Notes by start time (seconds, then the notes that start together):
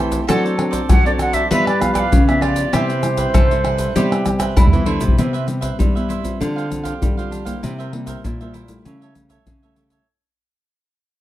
Already playing: E3 A3 C4 G4 A4 C5 E5 G5
0.12 pandeiro, shaker, surdo
0.27 F#3 C4 D4 F#4 A4 C5 D5, pandeiro, tamborim, shaker, surdo
0.43 A4 C5 D5, pandeiro, shaker
0.57 C4 D4 A4, muted cavaquinho stroke, pandeiro, tamborim
0.71 A4 C5 D5, pandeiro, shaker, surdo
0.89 F#3 F#5, pandeiro, tamborim, shaker, surdo
1.05 C4 D4 A4 C5 D5, pandeiro, shaker
1.19 F#4 A4 C5 D5 F#5, pandeiro, tamborim, shaker
1.33 A4 C5 D5 E5, pandeiro, shaker, surdo
1.50 G2 F3 G3 B3 E4 F4 G4 B4 D5 E5, pandeiro, shaker, surdo
1.66 G4 B4 D5, pandeiro, tamborim, shaker
1.80 F3 B3 E4 F5, muted cavaquinho stroke, pandeiro, tamborim, shaker, surdo
1.94 G4 B4 D5 G5, pandeiro, tamborim, shaker, surdo
1.98 F5
2.12 C#3, pandeiro, shaker, surdo
2.27 F3 B3 E4 G4 B4 D5 E5, pandeiro, tamborim, shaker
2.41 F4 G4 B4 D5, pandeiro, tamborim
2.56 pandeiro, shaker, surdo
2.72 C3 G3 B3 E4 G4 B4 C5 E5, pandeiro, tamborim, shaker, surdo
2.89 B4 C5 E5, pandeiro, shaker
3.03 G3 E4, pandeiro, tamborim, shaker
3.17 B4 C5 E5, pandeiro, shaker, surdo
3.34 G2 C3 A4, pandeiro, tamborim, shaker, surdo
3.51 G3 E4 B4 C5 E5, pandeiro, shaker
3.64 E4 B4 C5 E5, pandeiro, tamborim
3.78 B4 C5 E5, pandeiro, shaker, surdo
3.95 C3 G3 B3 E4 G4 B4 C5 E5, pandeiro, shaker, surdo
4.11 B4 C5 E5, pandeiro, tamborim, shaker
4.25 G3 E4, muted cavaquinho stroke, pandeiro, tamborim, shaker, surdo
4.39 B4 C5 E5, pandeiro, tamborim, shaker, surdo
4.57 G2 G3 E4, pandeiro, tamborim, shaker, surdo
4.67 surdo
4.72 E3 G3 B3 E4 B4 C5 E5, pandeiro, shaker
4.86 D3 E4 B4 C5 E5, pandeiro
5.01 C3, pandeiro, shaker, surdo
5.08 surdo
5.17 C3 G3 B3 E4 B4 C5 E5, pandeiro, shaker, surdo
5.33 B4 C5 E5, pandeiro, shaker
5.47 G3 B3 E4, muted cavaquinho stroke, pandeiro, shaker
5.61 B4 C5 E5, pandeiro, shaker, surdo
5.79 G2 G3 E4 B4 C5 E5, pandeiro, shaker, surdo
5.95 G3 B3 E4 B4 C5 E5, pandeiro, shaker
6.09 E4 B4 C5 E5, pandeiro, shaker
6.23 G3 C4 F4, pandeiro, shaker, surdo
6.40 D3 D4 G4 C5 F5, pandeiro, shaker, surdo
6.56 G4 C5 F5, pandeiro, shaker
6.70 G3 C4 F4, muted cavaquinho stroke, pandeiro, shaker, surdo
6.83 G4 C5 F5, pandeiro, shaker, surdo
7.01 D3 G3, pandeiro, shaker, surdo
7.17 G3 C4 F4 G4 C5 F5, pandeiro, shaker
7.31 D4 G4 C5 F5, pandeiro, shaker
7.45 G3 A#3 E4 G4 C5 F5, pandeiro, shaker, surdo
7.62 C3 E4 A#4 C5 E5, pandeiro, shaker, surdo
7.79 A#4 C5 E5, pandeiro, shaker
7.93 G3 A#3 E4, muted cavaquinho stroke, pandeiro
8.06 A#4 C5 E5, pandeiro, shaker, surdo
8.24 G2 A#2 E4 A#4 C5 E5, pandeiro, shaker, surdo
8.41 G3 A#3 E4 A#4 C5 E5, pandeiro, shaker
8.53 E4 A#4 C5 E5, pandeiro, shaker
8.68 G3 A3 E4, pandeiro, shaker, surdo
8.85 C#3 G4 A4 C#5 E5, pandeiro, shaker, surdo
9.01 A4 C#5 E5, pandeiro, shaker
9.15 G3 A3 E4, muted cavaquinho stroke, pandeiro, shaker, surdo
9.29 A4 C#5 E5, pandeiro, shaker, surdo
9.47 C#3, pandeiro, shaker, surdo
9.62 G3 A3 E4 A4 C#5 E5, pandeiro, shaker
9.76 G4 A4 C#5 E5, pandeiro, shaker
9.90 A4 C#5 E5, pandeiro, shaker, surdo